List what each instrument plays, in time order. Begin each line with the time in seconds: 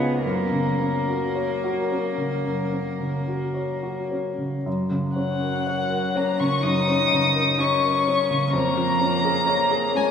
Already playing: grand piano C#2 G#2 C#4 F4, cello B3, violin G#4
0.23 grand piano F#2, cello A#3, violin A#4
0.52 grand piano C#3
0.80 grand piano C#4
1.08 grand piano F#4
1.36 grand piano C#5
1.64 grand piano F#4
1.92 grand piano C#4
2.18 grand piano C#3
2.46 grand piano F#2
2.72 grand piano C#4
3.00 grand piano C#3
3.27 grand piano F#4
3.54 grand piano C#5
3.83 grand piano F#4
4.11 grand piano C#4
4.38 grand piano C#3
4.66 grand piano F#2
4.91 grand piano C#3
5.16 cello F#3, grand piano C#4, violin F#5
5.41 grand piano A#4
5.67 grand piano C#5
5.91 grand piano A#4
6.15 cello A#3, grand piano C#4, violin A#5
6.40 grand piano C#3, cello C#4, violin C#6
6.62 grand piano F#2, cello D#4, violin D#6
6.88 grand piano C#4
7.11 grand piano C#3
7.35 grand piano A#4
7.58 cello C#4, grand piano C#5, violin C#6
7.83 grand piano A#4
8.07 grand piano C#4
8.31 grand piano C#3
8.53 grand piano F2, cello A#3, violin A#5
8.77 grand piano F3
9.01 grand piano C#4
9.25 grand piano G#4
9.47 grand piano C#5
9.71 grand piano G#4
9.95 cello G#3, grand piano C#4, violin G#5